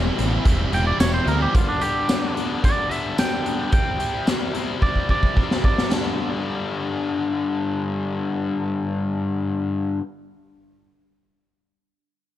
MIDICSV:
0, 0, Header, 1, 5, 480
1, 0, Start_track
1, 0, Key_signature, 1, "major"
1, 0, Tempo, 546448
1, 1354, Time_signature, 4, 2, 24, 8
1, 10872, End_track
2, 0, Start_track
2, 0, Title_t, "Clean electric guitar"
2, 0, Program_c, 0, 27
2, 652, Note_on_c, 0, 79, 78
2, 760, Note_off_c, 0, 79, 0
2, 764, Note_on_c, 0, 74, 69
2, 876, Note_off_c, 0, 74, 0
2, 881, Note_on_c, 0, 73, 68
2, 994, Note_off_c, 0, 73, 0
2, 1000, Note_on_c, 0, 72, 83
2, 1114, Note_off_c, 0, 72, 0
2, 1126, Note_on_c, 0, 70, 82
2, 1237, Note_off_c, 0, 70, 0
2, 1249, Note_on_c, 0, 67, 77
2, 1359, Note_off_c, 0, 67, 0
2, 1359, Note_on_c, 0, 65, 96
2, 1473, Note_off_c, 0, 65, 0
2, 1480, Note_on_c, 0, 62, 76
2, 1593, Note_off_c, 0, 62, 0
2, 1595, Note_on_c, 0, 67, 96
2, 2059, Note_off_c, 0, 67, 0
2, 2327, Note_on_c, 0, 74, 94
2, 2563, Note_off_c, 0, 74, 0
2, 2563, Note_on_c, 0, 76, 63
2, 2790, Note_off_c, 0, 76, 0
2, 2804, Note_on_c, 0, 79, 75
2, 3264, Note_off_c, 0, 79, 0
2, 3278, Note_on_c, 0, 79, 91
2, 3740, Note_off_c, 0, 79, 0
2, 4238, Note_on_c, 0, 74, 87
2, 4468, Note_off_c, 0, 74, 0
2, 4484, Note_on_c, 0, 74, 72
2, 4944, Note_off_c, 0, 74, 0
2, 4960, Note_on_c, 0, 74, 78
2, 5189, Note_off_c, 0, 74, 0
2, 10872, End_track
3, 0, Start_track
3, 0, Title_t, "Distorted electric guitar"
3, 0, Program_c, 1, 30
3, 0, Note_on_c, 1, 52, 82
3, 0, Note_on_c, 1, 55, 102
3, 0, Note_on_c, 1, 60, 87
3, 0, Note_on_c, 1, 64, 101
3, 137, Note_off_c, 1, 52, 0
3, 147, Note_on_c, 1, 52, 82
3, 149, Note_off_c, 1, 55, 0
3, 150, Note_off_c, 1, 60, 0
3, 152, Note_on_c, 1, 55, 77
3, 153, Note_off_c, 1, 64, 0
3, 161, Note_on_c, 1, 60, 83
3, 163, Note_on_c, 1, 64, 96
3, 371, Note_off_c, 1, 52, 0
3, 381, Note_on_c, 1, 52, 85
3, 384, Note_off_c, 1, 55, 0
3, 385, Note_off_c, 1, 60, 0
3, 388, Note_off_c, 1, 64, 0
3, 388, Note_on_c, 1, 55, 98
3, 396, Note_on_c, 1, 60, 94
3, 398, Note_on_c, 1, 64, 104
3, 611, Note_off_c, 1, 52, 0
3, 622, Note_on_c, 1, 52, 86
3, 625, Note_off_c, 1, 60, 0
3, 626, Note_off_c, 1, 55, 0
3, 628, Note_off_c, 1, 64, 0
3, 630, Note_on_c, 1, 55, 100
3, 636, Note_on_c, 1, 60, 90
3, 639, Note_on_c, 1, 64, 92
3, 857, Note_off_c, 1, 52, 0
3, 867, Note_off_c, 1, 60, 0
3, 867, Note_on_c, 1, 52, 94
3, 868, Note_off_c, 1, 55, 0
3, 871, Note_off_c, 1, 64, 0
3, 871, Note_on_c, 1, 55, 91
3, 878, Note_on_c, 1, 60, 100
3, 882, Note_on_c, 1, 64, 97
3, 1098, Note_off_c, 1, 52, 0
3, 1108, Note_on_c, 1, 52, 63
3, 1110, Note_off_c, 1, 60, 0
3, 1111, Note_off_c, 1, 55, 0
3, 1113, Note_off_c, 1, 64, 0
3, 1115, Note_on_c, 1, 55, 66
3, 1120, Note_on_c, 1, 60, 67
3, 1123, Note_on_c, 1, 64, 79
3, 1337, Note_off_c, 1, 52, 0
3, 1343, Note_off_c, 1, 60, 0
3, 1344, Note_off_c, 1, 64, 0
3, 1348, Note_on_c, 1, 50, 83
3, 1354, Note_off_c, 1, 55, 0
3, 1357, Note_on_c, 1, 55, 90
3, 1361, Note_on_c, 1, 59, 76
3, 1364, Note_on_c, 1, 62, 88
3, 1572, Note_off_c, 1, 50, 0
3, 1583, Note_on_c, 1, 50, 85
3, 1586, Note_off_c, 1, 55, 0
3, 1590, Note_off_c, 1, 59, 0
3, 1590, Note_on_c, 1, 55, 93
3, 1591, Note_off_c, 1, 62, 0
3, 1594, Note_on_c, 1, 59, 74
3, 1601, Note_on_c, 1, 62, 92
3, 1816, Note_off_c, 1, 50, 0
3, 1826, Note_on_c, 1, 50, 94
3, 1829, Note_off_c, 1, 55, 0
3, 1832, Note_on_c, 1, 55, 94
3, 1833, Note_off_c, 1, 62, 0
3, 1834, Note_off_c, 1, 59, 0
3, 1838, Note_on_c, 1, 59, 109
3, 1844, Note_on_c, 1, 62, 89
3, 2050, Note_off_c, 1, 50, 0
3, 2060, Note_on_c, 1, 50, 70
3, 2064, Note_off_c, 1, 55, 0
3, 2064, Note_off_c, 1, 62, 0
3, 2067, Note_on_c, 1, 55, 81
3, 2069, Note_off_c, 1, 59, 0
3, 2073, Note_on_c, 1, 59, 81
3, 2075, Note_on_c, 1, 62, 81
3, 2287, Note_off_c, 1, 50, 0
3, 2297, Note_on_c, 1, 50, 78
3, 2299, Note_off_c, 1, 55, 0
3, 2302, Note_off_c, 1, 62, 0
3, 2302, Note_on_c, 1, 55, 80
3, 2307, Note_off_c, 1, 59, 0
3, 2310, Note_on_c, 1, 59, 97
3, 2312, Note_on_c, 1, 62, 87
3, 2532, Note_off_c, 1, 50, 0
3, 2542, Note_on_c, 1, 50, 75
3, 2547, Note_off_c, 1, 55, 0
3, 2549, Note_off_c, 1, 59, 0
3, 2549, Note_off_c, 1, 62, 0
3, 2551, Note_on_c, 1, 55, 87
3, 2553, Note_on_c, 1, 59, 81
3, 2559, Note_on_c, 1, 62, 96
3, 2772, Note_off_c, 1, 50, 0
3, 2783, Note_on_c, 1, 50, 85
3, 2787, Note_off_c, 1, 55, 0
3, 2790, Note_off_c, 1, 62, 0
3, 2791, Note_on_c, 1, 55, 91
3, 2792, Note_off_c, 1, 59, 0
3, 2795, Note_on_c, 1, 59, 89
3, 2801, Note_on_c, 1, 62, 95
3, 3011, Note_off_c, 1, 50, 0
3, 3022, Note_on_c, 1, 50, 69
3, 3024, Note_off_c, 1, 55, 0
3, 3027, Note_off_c, 1, 62, 0
3, 3028, Note_on_c, 1, 55, 69
3, 3031, Note_off_c, 1, 59, 0
3, 3034, Note_on_c, 1, 59, 65
3, 3037, Note_on_c, 1, 62, 80
3, 3252, Note_off_c, 1, 50, 0
3, 3260, Note_off_c, 1, 62, 0
3, 3260, Note_on_c, 1, 48, 74
3, 3264, Note_off_c, 1, 55, 0
3, 3267, Note_on_c, 1, 55, 80
3, 3270, Note_off_c, 1, 59, 0
3, 3273, Note_on_c, 1, 60, 92
3, 3277, Note_on_c, 1, 64, 85
3, 3489, Note_off_c, 1, 48, 0
3, 3496, Note_off_c, 1, 55, 0
3, 3500, Note_on_c, 1, 48, 73
3, 3501, Note_off_c, 1, 60, 0
3, 3504, Note_off_c, 1, 64, 0
3, 3507, Note_on_c, 1, 55, 72
3, 3511, Note_on_c, 1, 60, 96
3, 3515, Note_on_c, 1, 64, 86
3, 3735, Note_off_c, 1, 48, 0
3, 3740, Note_off_c, 1, 55, 0
3, 3746, Note_on_c, 1, 48, 91
3, 3748, Note_off_c, 1, 60, 0
3, 3749, Note_off_c, 1, 64, 0
3, 3751, Note_on_c, 1, 55, 81
3, 3758, Note_on_c, 1, 60, 84
3, 3760, Note_on_c, 1, 64, 104
3, 3971, Note_off_c, 1, 48, 0
3, 3976, Note_off_c, 1, 55, 0
3, 3980, Note_off_c, 1, 60, 0
3, 3982, Note_on_c, 1, 48, 68
3, 3986, Note_on_c, 1, 55, 62
3, 3987, Note_off_c, 1, 64, 0
3, 3990, Note_on_c, 1, 60, 71
3, 3997, Note_on_c, 1, 64, 83
3, 4216, Note_off_c, 1, 48, 0
3, 4222, Note_off_c, 1, 55, 0
3, 4227, Note_on_c, 1, 48, 81
3, 4228, Note_off_c, 1, 60, 0
3, 4233, Note_off_c, 1, 64, 0
3, 4233, Note_on_c, 1, 55, 93
3, 4239, Note_on_c, 1, 60, 86
3, 4244, Note_on_c, 1, 64, 83
3, 4457, Note_off_c, 1, 48, 0
3, 4464, Note_off_c, 1, 55, 0
3, 4467, Note_on_c, 1, 48, 81
3, 4469, Note_off_c, 1, 60, 0
3, 4474, Note_on_c, 1, 55, 83
3, 4475, Note_off_c, 1, 64, 0
3, 4479, Note_on_c, 1, 60, 88
3, 4486, Note_on_c, 1, 64, 81
3, 4694, Note_off_c, 1, 48, 0
3, 4698, Note_off_c, 1, 55, 0
3, 4704, Note_on_c, 1, 48, 84
3, 4706, Note_off_c, 1, 60, 0
3, 4708, Note_off_c, 1, 64, 0
3, 4708, Note_on_c, 1, 55, 84
3, 4717, Note_on_c, 1, 60, 87
3, 4718, Note_on_c, 1, 64, 89
3, 4939, Note_off_c, 1, 48, 0
3, 4942, Note_off_c, 1, 55, 0
3, 4949, Note_off_c, 1, 60, 0
3, 4950, Note_on_c, 1, 48, 65
3, 4952, Note_on_c, 1, 55, 64
3, 4954, Note_off_c, 1, 64, 0
3, 4960, Note_on_c, 1, 60, 72
3, 4965, Note_on_c, 1, 64, 75
3, 5176, Note_off_c, 1, 48, 0
3, 5177, Note_on_c, 1, 43, 75
3, 5178, Note_off_c, 1, 55, 0
3, 5182, Note_off_c, 1, 60, 0
3, 5184, Note_off_c, 1, 64, 0
3, 5189, Note_on_c, 1, 50, 76
3, 5200, Note_on_c, 1, 55, 72
3, 5207, Note_on_c, 1, 59, 80
3, 5214, Note_on_c, 1, 62, 84
3, 8774, Note_off_c, 1, 43, 0
3, 8786, Note_off_c, 1, 50, 0
3, 8797, Note_off_c, 1, 55, 0
3, 8803, Note_off_c, 1, 59, 0
3, 8811, Note_off_c, 1, 62, 0
3, 10872, End_track
4, 0, Start_track
4, 0, Title_t, "Picked electric bass"
4, 0, Program_c, 2, 34
4, 165, Note_on_c, 2, 33, 77
4, 323, Note_off_c, 2, 33, 0
4, 400, Note_on_c, 2, 28, 85
4, 559, Note_off_c, 2, 28, 0
4, 639, Note_on_c, 2, 28, 81
4, 798, Note_off_c, 2, 28, 0
4, 877, Note_on_c, 2, 28, 81
4, 1037, Note_off_c, 2, 28, 0
4, 1112, Note_on_c, 2, 38, 83
4, 1273, Note_off_c, 2, 38, 0
4, 10872, End_track
5, 0, Start_track
5, 0, Title_t, "Drums"
5, 162, Note_on_c, 9, 42, 58
5, 250, Note_off_c, 9, 42, 0
5, 397, Note_on_c, 9, 42, 70
5, 400, Note_on_c, 9, 36, 79
5, 485, Note_off_c, 9, 42, 0
5, 488, Note_off_c, 9, 36, 0
5, 640, Note_on_c, 9, 42, 54
5, 727, Note_off_c, 9, 42, 0
5, 879, Note_on_c, 9, 42, 92
5, 879, Note_on_c, 9, 54, 104
5, 884, Note_on_c, 9, 38, 121
5, 967, Note_off_c, 9, 42, 0
5, 967, Note_off_c, 9, 54, 0
5, 971, Note_off_c, 9, 38, 0
5, 1119, Note_on_c, 9, 42, 61
5, 1207, Note_off_c, 9, 42, 0
5, 1359, Note_on_c, 9, 36, 101
5, 1361, Note_on_c, 9, 42, 78
5, 1447, Note_off_c, 9, 36, 0
5, 1449, Note_off_c, 9, 42, 0
5, 1593, Note_on_c, 9, 42, 62
5, 1681, Note_off_c, 9, 42, 0
5, 1835, Note_on_c, 9, 42, 83
5, 1835, Note_on_c, 9, 54, 102
5, 1839, Note_on_c, 9, 38, 94
5, 1923, Note_off_c, 9, 42, 0
5, 1923, Note_off_c, 9, 54, 0
5, 1927, Note_off_c, 9, 38, 0
5, 2081, Note_on_c, 9, 42, 58
5, 2169, Note_off_c, 9, 42, 0
5, 2318, Note_on_c, 9, 36, 77
5, 2318, Note_on_c, 9, 42, 71
5, 2406, Note_off_c, 9, 36, 0
5, 2406, Note_off_c, 9, 42, 0
5, 2557, Note_on_c, 9, 42, 53
5, 2645, Note_off_c, 9, 42, 0
5, 2796, Note_on_c, 9, 42, 77
5, 2796, Note_on_c, 9, 54, 113
5, 2800, Note_on_c, 9, 38, 95
5, 2883, Note_off_c, 9, 42, 0
5, 2883, Note_off_c, 9, 54, 0
5, 2888, Note_off_c, 9, 38, 0
5, 3038, Note_on_c, 9, 42, 49
5, 3126, Note_off_c, 9, 42, 0
5, 3270, Note_on_c, 9, 42, 72
5, 3274, Note_on_c, 9, 36, 107
5, 3358, Note_off_c, 9, 42, 0
5, 3362, Note_off_c, 9, 36, 0
5, 3512, Note_on_c, 9, 42, 56
5, 3600, Note_off_c, 9, 42, 0
5, 3751, Note_on_c, 9, 42, 70
5, 3751, Note_on_c, 9, 54, 89
5, 3756, Note_on_c, 9, 38, 93
5, 3839, Note_off_c, 9, 42, 0
5, 3839, Note_off_c, 9, 54, 0
5, 3844, Note_off_c, 9, 38, 0
5, 3992, Note_on_c, 9, 42, 54
5, 4080, Note_off_c, 9, 42, 0
5, 4234, Note_on_c, 9, 36, 77
5, 4322, Note_off_c, 9, 36, 0
5, 4353, Note_on_c, 9, 36, 45
5, 4441, Note_off_c, 9, 36, 0
5, 4472, Note_on_c, 9, 36, 55
5, 4560, Note_off_c, 9, 36, 0
5, 4593, Note_on_c, 9, 36, 62
5, 4681, Note_off_c, 9, 36, 0
5, 4715, Note_on_c, 9, 36, 79
5, 4802, Note_off_c, 9, 36, 0
5, 4843, Note_on_c, 9, 38, 73
5, 4931, Note_off_c, 9, 38, 0
5, 4954, Note_on_c, 9, 36, 75
5, 5042, Note_off_c, 9, 36, 0
5, 5080, Note_on_c, 9, 38, 75
5, 5168, Note_off_c, 9, 38, 0
5, 5193, Note_on_c, 9, 55, 75
5, 5198, Note_on_c, 9, 38, 90
5, 5281, Note_off_c, 9, 55, 0
5, 5286, Note_off_c, 9, 38, 0
5, 10872, End_track
0, 0, End_of_file